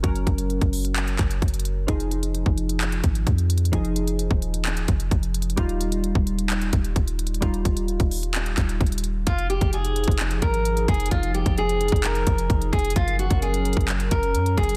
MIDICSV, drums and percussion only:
0, 0, Header, 1, 2, 480
1, 0, Start_track
1, 0, Key_signature, -4, "minor"
1, 0, Tempo, 461538
1, 38, Time_signature, 4, 2, 24, 8
1, 15357, End_track
2, 0, Start_track
2, 0, Title_t, "Drums"
2, 39, Note_on_c, 9, 36, 118
2, 39, Note_on_c, 9, 42, 86
2, 143, Note_off_c, 9, 36, 0
2, 143, Note_off_c, 9, 42, 0
2, 161, Note_on_c, 9, 42, 54
2, 265, Note_off_c, 9, 42, 0
2, 278, Note_on_c, 9, 36, 89
2, 280, Note_on_c, 9, 42, 75
2, 382, Note_off_c, 9, 36, 0
2, 384, Note_off_c, 9, 42, 0
2, 398, Note_on_c, 9, 42, 80
2, 502, Note_off_c, 9, 42, 0
2, 519, Note_on_c, 9, 42, 35
2, 623, Note_off_c, 9, 42, 0
2, 639, Note_on_c, 9, 36, 90
2, 639, Note_on_c, 9, 42, 58
2, 743, Note_off_c, 9, 36, 0
2, 743, Note_off_c, 9, 42, 0
2, 759, Note_on_c, 9, 46, 79
2, 863, Note_off_c, 9, 46, 0
2, 881, Note_on_c, 9, 42, 57
2, 985, Note_off_c, 9, 42, 0
2, 999, Note_on_c, 9, 42, 77
2, 1000, Note_on_c, 9, 39, 121
2, 1103, Note_off_c, 9, 42, 0
2, 1104, Note_off_c, 9, 39, 0
2, 1118, Note_on_c, 9, 42, 50
2, 1222, Note_off_c, 9, 42, 0
2, 1237, Note_on_c, 9, 42, 82
2, 1238, Note_on_c, 9, 39, 86
2, 1239, Note_on_c, 9, 36, 93
2, 1341, Note_off_c, 9, 42, 0
2, 1342, Note_off_c, 9, 39, 0
2, 1343, Note_off_c, 9, 36, 0
2, 1358, Note_on_c, 9, 42, 54
2, 1462, Note_off_c, 9, 42, 0
2, 1478, Note_on_c, 9, 36, 98
2, 1478, Note_on_c, 9, 42, 42
2, 1539, Note_off_c, 9, 42, 0
2, 1539, Note_on_c, 9, 42, 53
2, 1582, Note_off_c, 9, 36, 0
2, 1598, Note_off_c, 9, 42, 0
2, 1598, Note_on_c, 9, 42, 63
2, 1659, Note_off_c, 9, 42, 0
2, 1659, Note_on_c, 9, 42, 73
2, 1718, Note_off_c, 9, 42, 0
2, 1718, Note_on_c, 9, 42, 74
2, 1822, Note_off_c, 9, 42, 0
2, 1958, Note_on_c, 9, 36, 117
2, 1958, Note_on_c, 9, 42, 87
2, 2062, Note_off_c, 9, 36, 0
2, 2062, Note_off_c, 9, 42, 0
2, 2080, Note_on_c, 9, 42, 54
2, 2184, Note_off_c, 9, 42, 0
2, 2199, Note_on_c, 9, 42, 76
2, 2303, Note_off_c, 9, 42, 0
2, 2318, Note_on_c, 9, 42, 80
2, 2422, Note_off_c, 9, 42, 0
2, 2439, Note_on_c, 9, 42, 58
2, 2543, Note_off_c, 9, 42, 0
2, 2559, Note_on_c, 9, 36, 90
2, 2663, Note_off_c, 9, 36, 0
2, 2679, Note_on_c, 9, 42, 56
2, 2783, Note_off_c, 9, 42, 0
2, 2801, Note_on_c, 9, 42, 56
2, 2905, Note_off_c, 9, 42, 0
2, 2919, Note_on_c, 9, 42, 81
2, 2920, Note_on_c, 9, 39, 124
2, 3023, Note_off_c, 9, 42, 0
2, 3024, Note_off_c, 9, 39, 0
2, 3040, Note_on_c, 9, 42, 51
2, 3144, Note_off_c, 9, 42, 0
2, 3158, Note_on_c, 9, 42, 83
2, 3159, Note_on_c, 9, 36, 90
2, 3262, Note_off_c, 9, 42, 0
2, 3263, Note_off_c, 9, 36, 0
2, 3278, Note_on_c, 9, 42, 56
2, 3382, Note_off_c, 9, 42, 0
2, 3397, Note_on_c, 9, 36, 96
2, 3399, Note_on_c, 9, 42, 70
2, 3501, Note_off_c, 9, 36, 0
2, 3503, Note_off_c, 9, 42, 0
2, 3519, Note_on_c, 9, 42, 40
2, 3623, Note_off_c, 9, 42, 0
2, 3638, Note_on_c, 9, 42, 74
2, 3719, Note_off_c, 9, 42, 0
2, 3719, Note_on_c, 9, 42, 59
2, 3799, Note_off_c, 9, 42, 0
2, 3799, Note_on_c, 9, 42, 46
2, 3878, Note_off_c, 9, 42, 0
2, 3878, Note_on_c, 9, 36, 118
2, 3878, Note_on_c, 9, 42, 87
2, 3982, Note_off_c, 9, 36, 0
2, 3982, Note_off_c, 9, 42, 0
2, 4000, Note_on_c, 9, 42, 52
2, 4104, Note_off_c, 9, 42, 0
2, 4119, Note_on_c, 9, 42, 75
2, 4223, Note_off_c, 9, 42, 0
2, 4238, Note_on_c, 9, 42, 80
2, 4342, Note_off_c, 9, 42, 0
2, 4359, Note_on_c, 9, 42, 58
2, 4463, Note_off_c, 9, 42, 0
2, 4478, Note_on_c, 9, 36, 89
2, 4582, Note_off_c, 9, 36, 0
2, 4599, Note_on_c, 9, 42, 57
2, 4703, Note_off_c, 9, 42, 0
2, 4721, Note_on_c, 9, 42, 57
2, 4825, Note_off_c, 9, 42, 0
2, 4839, Note_on_c, 9, 42, 79
2, 4840, Note_on_c, 9, 39, 125
2, 4943, Note_off_c, 9, 42, 0
2, 4944, Note_off_c, 9, 39, 0
2, 4959, Note_on_c, 9, 42, 51
2, 5063, Note_off_c, 9, 42, 0
2, 5077, Note_on_c, 9, 42, 84
2, 5079, Note_on_c, 9, 36, 91
2, 5181, Note_off_c, 9, 42, 0
2, 5183, Note_off_c, 9, 36, 0
2, 5198, Note_on_c, 9, 42, 54
2, 5302, Note_off_c, 9, 42, 0
2, 5318, Note_on_c, 9, 36, 95
2, 5319, Note_on_c, 9, 42, 71
2, 5422, Note_off_c, 9, 36, 0
2, 5423, Note_off_c, 9, 42, 0
2, 5439, Note_on_c, 9, 42, 42
2, 5543, Note_off_c, 9, 42, 0
2, 5558, Note_on_c, 9, 42, 76
2, 5639, Note_off_c, 9, 42, 0
2, 5639, Note_on_c, 9, 42, 62
2, 5718, Note_off_c, 9, 42, 0
2, 5718, Note_on_c, 9, 42, 45
2, 5797, Note_off_c, 9, 42, 0
2, 5797, Note_on_c, 9, 42, 86
2, 5798, Note_on_c, 9, 36, 119
2, 5901, Note_off_c, 9, 42, 0
2, 5902, Note_off_c, 9, 36, 0
2, 5919, Note_on_c, 9, 42, 53
2, 6023, Note_off_c, 9, 42, 0
2, 6039, Note_on_c, 9, 42, 76
2, 6143, Note_off_c, 9, 42, 0
2, 6157, Note_on_c, 9, 42, 81
2, 6261, Note_off_c, 9, 42, 0
2, 6279, Note_on_c, 9, 42, 57
2, 6383, Note_off_c, 9, 42, 0
2, 6399, Note_on_c, 9, 36, 89
2, 6503, Note_off_c, 9, 36, 0
2, 6519, Note_on_c, 9, 42, 57
2, 6623, Note_off_c, 9, 42, 0
2, 6641, Note_on_c, 9, 42, 57
2, 6745, Note_off_c, 9, 42, 0
2, 6758, Note_on_c, 9, 42, 76
2, 6759, Note_on_c, 9, 39, 122
2, 6862, Note_off_c, 9, 42, 0
2, 6863, Note_off_c, 9, 39, 0
2, 6879, Note_on_c, 9, 42, 49
2, 6983, Note_off_c, 9, 42, 0
2, 6997, Note_on_c, 9, 42, 83
2, 6999, Note_on_c, 9, 36, 92
2, 7101, Note_off_c, 9, 42, 0
2, 7103, Note_off_c, 9, 36, 0
2, 7118, Note_on_c, 9, 42, 55
2, 7222, Note_off_c, 9, 42, 0
2, 7238, Note_on_c, 9, 36, 92
2, 7239, Note_on_c, 9, 42, 69
2, 7342, Note_off_c, 9, 36, 0
2, 7343, Note_off_c, 9, 42, 0
2, 7358, Note_on_c, 9, 42, 40
2, 7462, Note_off_c, 9, 42, 0
2, 7478, Note_on_c, 9, 42, 74
2, 7558, Note_off_c, 9, 42, 0
2, 7558, Note_on_c, 9, 42, 61
2, 7638, Note_off_c, 9, 42, 0
2, 7638, Note_on_c, 9, 42, 46
2, 7718, Note_off_c, 9, 42, 0
2, 7718, Note_on_c, 9, 36, 117
2, 7718, Note_on_c, 9, 42, 84
2, 7822, Note_off_c, 9, 36, 0
2, 7822, Note_off_c, 9, 42, 0
2, 7839, Note_on_c, 9, 42, 54
2, 7943, Note_off_c, 9, 42, 0
2, 7958, Note_on_c, 9, 36, 84
2, 7959, Note_on_c, 9, 42, 76
2, 8062, Note_off_c, 9, 36, 0
2, 8063, Note_off_c, 9, 42, 0
2, 8077, Note_on_c, 9, 42, 81
2, 8181, Note_off_c, 9, 42, 0
2, 8198, Note_on_c, 9, 42, 35
2, 8302, Note_off_c, 9, 42, 0
2, 8318, Note_on_c, 9, 36, 90
2, 8318, Note_on_c, 9, 42, 56
2, 8422, Note_off_c, 9, 36, 0
2, 8422, Note_off_c, 9, 42, 0
2, 8438, Note_on_c, 9, 46, 78
2, 8542, Note_off_c, 9, 46, 0
2, 8560, Note_on_c, 9, 42, 55
2, 8664, Note_off_c, 9, 42, 0
2, 8678, Note_on_c, 9, 42, 80
2, 8679, Note_on_c, 9, 39, 120
2, 8782, Note_off_c, 9, 42, 0
2, 8783, Note_off_c, 9, 39, 0
2, 8799, Note_on_c, 9, 42, 50
2, 8903, Note_off_c, 9, 42, 0
2, 8918, Note_on_c, 9, 42, 84
2, 8919, Note_on_c, 9, 36, 90
2, 8920, Note_on_c, 9, 39, 87
2, 9022, Note_off_c, 9, 42, 0
2, 9023, Note_off_c, 9, 36, 0
2, 9024, Note_off_c, 9, 39, 0
2, 9039, Note_on_c, 9, 42, 53
2, 9143, Note_off_c, 9, 42, 0
2, 9158, Note_on_c, 9, 36, 97
2, 9159, Note_on_c, 9, 42, 44
2, 9219, Note_off_c, 9, 42, 0
2, 9219, Note_on_c, 9, 42, 52
2, 9262, Note_off_c, 9, 36, 0
2, 9279, Note_off_c, 9, 42, 0
2, 9279, Note_on_c, 9, 42, 63
2, 9338, Note_off_c, 9, 42, 0
2, 9338, Note_on_c, 9, 42, 72
2, 9399, Note_off_c, 9, 42, 0
2, 9399, Note_on_c, 9, 42, 72
2, 9503, Note_off_c, 9, 42, 0
2, 9638, Note_on_c, 9, 42, 91
2, 9639, Note_on_c, 9, 36, 120
2, 9742, Note_off_c, 9, 42, 0
2, 9743, Note_off_c, 9, 36, 0
2, 9760, Note_on_c, 9, 42, 55
2, 9864, Note_off_c, 9, 42, 0
2, 9878, Note_on_c, 9, 42, 58
2, 9982, Note_off_c, 9, 42, 0
2, 9997, Note_on_c, 9, 42, 83
2, 9998, Note_on_c, 9, 36, 101
2, 10101, Note_off_c, 9, 42, 0
2, 10102, Note_off_c, 9, 36, 0
2, 10117, Note_on_c, 9, 42, 62
2, 10221, Note_off_c, 9, 42, 0
2, 10239, Note_on_c, 9, 42, 52
2, 10343, Note_off_c, 9, 42, 0
2, 10358, Note_on_c, 9, 42, 64
2, 10438, Note_off_c, 9, 42, 0
2, 10438, Note_on_c, 9, 42, 62
2, 10479, Note_on_c, 9, 36, 97
2, 10519, Note_off_c, 9, 42, 0
2, 10519, Note_on_c, 9, 42, 63
2, 10583, Note_off_c, 9, 36, 0
2, 10599, Note_off_c, 9, 42, 0
2, 10599, Note_on_c, 9, 42, 81
2, 10600, Note_on_c, 9, 39, 122
2, 10703, Note_off_c, 9, 42, 0
2, 10704, Note_off_c, 9, 39, 0
2, 10719, Note_on_c, 9, 42, 51
2, 10823, Note_off_c, 9, 42, 0
2, 10838, Note_on_c, 9, 42, 85
2, 10839, Note_on_c, 9, 36, 95
2, 10942, Note_off_c, 9, 42, 0
2, 10943, Note_off_c, 9, 36, 0
2, 10959, Note_on_c, 9, 42, 56
2, 11063, Note_off_c, 9, 42, 0
2, 11079, Note_on_c, 9, 42, 78
2, 11183, Note_off_c, 9, 42, 0
2, 11200, Note_on_c, 9, 42, 59
2, 11304, Note_off_c, 9, 42, 0
2, 11318, Note_on_c, 9, 36, 96
2, 11319, Note_on_c, 9, 42, 68
2, 11379, Note_off_c, 9, 42, 0
2, 11379, Note_on_c, 9, 42, 65
2, 11422, Note_off_c, 9, 36, 0
2, 11438, Note_off_c, 9, 42, 0
2, 11438, Note_on_c, 9, 42, 67
2, 11499, Note_off_c, 9, 42, 0
2, 11499, Note_on_c, 9, 42, 65
2, 11558, Note_off_c, 9, 42, 0
2, 11558, Note_on_c, 9, 42, 90
2, 11559, Note_on_c, 9, 36, 117
2, 11662, Note_off_c, 9, 42, 0
2, 11663, Note_off_c, 9, 36, 0
2, 11680, Note_on_c, 9, 42, 56
2, 11784, Note_off_c, 9, 42, 0
2, 11798, Note_on_c, 9, 42, 56
2, 11902, Note_off_c, 9, 42, 0
2, 11917, Note_on_c, 9, 42, 83
2, 11918, Note_on_c, 9, 36, 96
2, 12021, Note_off_c, 9, 42, 0
2, 12022, Note_off_c, 9, 36, 0
2, 12039, Note_on_c, 9, 42, 63
2, 12143, Note_off_c, 9, 42, 0
2, 12160, Note_on_c, 9, 42, 54
2, 12264, Note_off_c, 9, 42, 0
2, 12278, Note_on_c, 9, 46, 78
2, 12279, Note_on_c, 9, 42, 65
2, 12359, Note_off_c, 9, 42, 0
2, 12359, Note_on_c, 9, 42, 61
2, 12382, Note_off_c, 9, 46, 0
2, 12399, Note_on_c, 9, 36, 101
2, 12438, Note_off_c, 9, 42, 0
2, 12438, Note_on_c, 9, 42, 64
2, 12503, Note_off_c, 9, 36, 0
2, 12519, Note_off_c, 9, 42, 0
2, 12519, Note_on_c, 9, 42, 83
2, 12520, Note_on_c, 9, 39, 127
2, 12623, Note_off_c, 9, 42, 0
2, 12624, Note_off_c, 9, 39, 0
2, 12639, Note_on_c, 9, 42, 51
2, 12743, Note_off_c, 9, 42, 0
2, 12757, Note_on_c, 9, 42, 86
2, 12759, Note_on_c, 9, 36, 89
2, 12861, Note_off_c, 9, 42, 0
2, 12863, Note_off_c, 9, 36, 0
2, 12879, Note_on_c, 9, 42, 57
2, 12983, Note_off_c, 9, 42, 0
2, 12998, Note_on_c, 9, 36, 101
2, 13000, Note_on_c, 9, 42, 77
2, 13102, Note_off_c, 9, 36, 0
2, 13104, Note_off_c, 9, 42, 0
2, 13120, Note_on_c, 9, 42, 58
2, 13224, Note_off_c, 9, 42, 0
2, 13238, Note_on_c, 9, 36, 96
2, 13238, Note_on_c, 9, 42, 65
2, 13299, Note_off_c, 9, 42, 0
2, 13299, Note_on_c, 9, 42, 66
2, 13342, Note_off_c, 9, 36, 0
2, 13359, Note_off_c, 9, 42, 0
2, 13359, Note_on_c, 9, 42, 67
2, 13418, Note_off_c, 9, 42, 0
2, 13418, Note_on_c, 9, 42, 64
2, 13478, Note_off_c, 9, 42, 0
2, 13478, Note_on_c, 9, 36, 121
2, 13478, Note_on_c, 9, 42, 88
2, 13582, Note_off_c, 9, 36, 0
2, 13582, Note_off_c, 9, 42, 0
2, 13600, Note_on_c, 9, 42, 55
2, 13704, Note_off_c, 9, 42, 0
2, 13719, Note_on_c, 9, 42, 56
2, 13823, Note_off_c, 9, 42, 0
2, 13837, Note_on_c, 9, 42, 83
2, 13838, Note_on_c, 9, 36, 98
2, 13941, Note_off_c, 9, 42, 0
2, 13942, Note_off_c, 9, 36, 0
2, 13959, Note_on_c, 9, 42, 65
2, 14063, Note_off_c, 9, 42, 0
2, 14080, Note_on_c, 9, 42, 51
2, 14184, Note_off_c, 9, 42, 0
2, 14199, Note_on_c, 9, 42, 65
2, 14279, Note_off_c, 9, 42, 0
2, 14279, Note_on_c, 9, 42, 64
2, 14318, Note_on_c, 9, 36, 97
2, 14358, Note_off_c, 9, 42, 0
2, 14358, Note_on_c, 9, 42, 62
2, 14422, Note_off_c, 9, 36, 0
2, 14438, Note_off_c, 9, 42, 0
2, 14438, Note_on_c, 9, 42, 82
2, 14439, Note_on_c, 9, 39, 127
2, 14542, Note_off_c, 9, 42, 0
2, 14543, Note_off_c, 9, 39, 0
2, 14559, Note_on_c, 9, 42, 54
2, 14663, Note_off_c, 9, 42, 0
2, 14677, Note_on_c, 9, 42, 87
2, 14679, Note_on_c, 9, 36, 95
2, 14781, Note_off_c, 9, 42, 0
2, 14783, Note_off_c, 9, 36, 0
2, 14798, Note_on_c, 9, 42, 56
2, 14902, Note_off_c, 9, 42, 0
2, 14920, Note_on_c, 9, 42, 80
2, 15024, Note_off_c, 9, 42, 0
2, 15040, Note_on_c, 9, 42, 58
2, 15144, Note_off_c, 9, 42, 0
2, 15158, Note_on_c, 9, 36, 93
2, 15159, Note_on_c, 9, 42, 65
2, 15218, Note_off_c, 9, 42, 0
2, 15218, Note_on_c, 9, 42, 65
2, 15262, Note_off_c, 9, 36, 0
2, 15279, Note_off_c, 9, 42, 0
2, 15279, Note_on_c, 9, 42, 66
2, 15357, Note_off_c, 9, 42, 0
2, 15357, End_track
0, 0, End_of_file